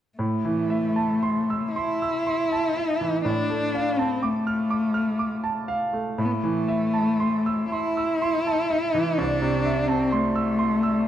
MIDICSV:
0, 0, Header, 1, 3, 480
1, 0, Start_track
1, 0, Key_signature, 0, "minor"
1, 0, Tempo, 1039861
1, 87, Time_signature, 3, 2, 24, 8
1, 1050, Tempo, 975610
1, 2970, Tempo, 1022147
1, 3930, Tempo, 952381
1, 5370, End_track
2, 0, Start_track
2, 0, Title_t, "Grand piano"
2, 0, Program_c, 0, 0
2, 86, Note_on_c, 0, 45, 36
2, 169, Control_c, 0, 64, 127
2, 207, Note_on_c, 0, 52, 31
2, 323, Note_on_c, 0, 76, 34
2, 396, Note_off_c, 0, 52, 0
2, 443, Note_on_c, 0, 81, 31
2, 518, Note_off_c, 0, 76, 0
2, 566, Note_on_c, 0, 84, 32
2, 643, Note_off_c, 0, 81, 0
2, 693, Note_on_c, 0, 88, 30
2, 765, Note_off_c, 0, 84, 0
2, 812, Note_on_c, 0, 84, 35
2, 887, Note_off_c, 0, 88, 0
2, 933, Note_on_c, 0, 88, 31
2, 1002, Note_off_c, 0, 84, 0
2, 1047, Note_on_c, 0, 84, 34
2, 1121, Note_off_c, 0, 88, 0
2, 1173, Note_on_c, 0, 81, 30
2, 1240, Note_off_c, 0, 84, 0
2, 1292, Note_on_c, 0, 76, 32
2, 1363, Note_off_c, 0, 81, 0
2, 1411, Note_on_c, 0, 52, 30
2, 1483, Note_off_c, 0, 76, 0
2, 1510, Note_off_c, 0, 45, 0
2, 1529, Note_on_c, 0, 45, 39
2, 1532, Note_off_c, 0, 52, 0
2, 1540, Control_c, 0, 64, 0
2, 1621, Control_c, 0, 64, 127
2, 1652, Note_on_c, 0, 57, 33
2, 1775, Note_on_c, 0, 77, 30
2, 1845, Note_off_c, 0, 57, 0
2, 1893, Note_on_c, 0, 81, 32
2, 1965, Note_off_c, 0, 77, 0
2, 2010, Note_on_c, 0, 86, 35
2, 2082, Note_off_c, 0, 81, 0
2, 2129, Note_on_c, 0, 89, 35
2, 2199, Note_off_c, 0, 86, 0
2, 2246, Note_on_c, 0, 86, 34
2, 2318, Note_off_c, 0, 89, 0
2, 2362, Note_on_c, 0, 89, 32
2, 2437, Note_off_c, 0, 86, 0
2, 2485, Note_on_c, 0, 86, 34
2, 2556, Note_off_c, 0, 89, 0
2, 2606, Note_on_c, 0, 81, 34
2, 2679, Note_off_c, 0, 86, 0
2, 2726, Note_on_c, 0, 77, 36
2, 2800, Note_off_c, 0, 81, 0
2, 2849, Note_on_c, 0, 57, 28
2, 2921, Note_off_c, 0, 77, 0
2, 2949, Note_off_c, 0, 45, 0
2, 2970, Note_off_c, 0, 57, 0
2, 2972, Note_on_c, 0, 45, 42
2, 2976, Control_c, 0, 64, 0
2, 3062, Control_c, 0, 64, 127
2, 3091, Note_on_c, 0, 52, 33
2, 3208, Note_on_c, 0, 76, 35
2, 3277, Note_off_c, 0, 52, 0
2, 3327, Note_on_c, 0, 81, 35
2, 3399, Note_off_c, 0, 76, 0
2, 3450, Note_on_c, 0, 84, 35
2, 3525, Note_off_c, 0, 81, 0
2, 3574, Note_on_c, 0, 88, 34
2, 3648, Note_off_c, 0, 84, 0
2, 3695, Note_on_c, 0, 84, 37
2, 3768, Note_off_c, 0, 88, 0
2, 3813, Note_on_c, 0, 88, 36
2, 3884, Note_off_c, 0, 84, 0
2, 3928, Note_on_c, 0, 84, 37
2, 4002, Note_off_c, 0, 88, 0
2, 4055, Note_on_c, 0, 81, 31
2, 4123, Note_off_c, 0, 84, 0
2, 4173, Note_on_c, 0, 76, 33
2, 4246, Note_off_c, 0, 81, 0
2, 4294, Note_on_c, 0, 52, 32
2, 4366, Note_off_c, 0, 76, 0
2, 4395, Note_off_c, 0, 45, 0
2, 4414, Note_off_c, 0, 52, 0
2, 4414, Note_on_c, 0, 36, 44
2, 4422, Control_c, 0, 64, 0
2, 4506, Control_c, 0, 64, 127
2, 4533, Note_on_c, 0, 48, 37
2, 4651, Note_on_c, 0, 76, 37
2, 4724, Note_off_c, 0, 48, 0
2, 4768, Note_on_c, 0, 81, 35
2, 4841, Note_off_c, 0, 76, 0
2, 4888, Note_on_c, 0, 84, 39
2, 4959, Note_off_c, 0, 81, 0
2, 5006, Note_on_c, 0, 88, 35
2, 5079, Note_off_c, 0, 84, 0
2, 5122, Note_on_c, 0, 84, 41
2, 5198, Note_off_c, 0, 88, 0
2, 5246, Note_on_c, 0, 88, 39
2, 5318, Note_off_c, 0, 84, 0
2, 5370, Note_off_c, 0, 36, 0
2, 5370, Note_off_c, 0, 88, 0
2, 5370, End_track
3, 0, Start_track
3, 0, Title_t, "Cello"
3, 0, Program_c, 1, 42
3, 83, Note_on_c, 1, 57, 54
3, 794, Note_off_c, 1, 57, 0
3, 813, Note_on_c, 1, 64, 60
3, 1515, Note_off_c, 1, 64, 0
3, 1533, Note_on_c, 1, 62, 59
3, 1894, Note_on_c, 1, 60, 52
3, 1901, Note_off_c, 1, 62, 0
3, 2015, Note_on_c, 1, 57, 52
3, 2022, Note_off_c, 1, 60, 0
3, 2729, Note_off_c, 1, 57, 0
3, 2974, Note_on_c, 1, 57, 50
3, 3006, Note_on_c, 1, 59, 43
3, 3013, Note_off_c, 1, 57, 0
3, 3035, Note_on_c, 1, 57, 59
3, 3043, Note_off_c, 1, 59, 0
3, 3694, Note_off_c, 1, 57, 0
3, 3697, Note_on_c, 1, 64, 64
3, 4416, Note_on_c, 1, 62, 63
3, 4423, Note_off_c, 1, 64, 0
3, 4771, Note_on_c, 1, 60, 60
3, 4778, Note_off_c, 1, 62, 0
3, 4889, Note_on_c, 1, 57, 61
3, 4897, Note_off_c, 1, 60, 0
3, 5370, Note_off_c, 1, 57, 0
3, 5370, End_track
0, 0, End_of_file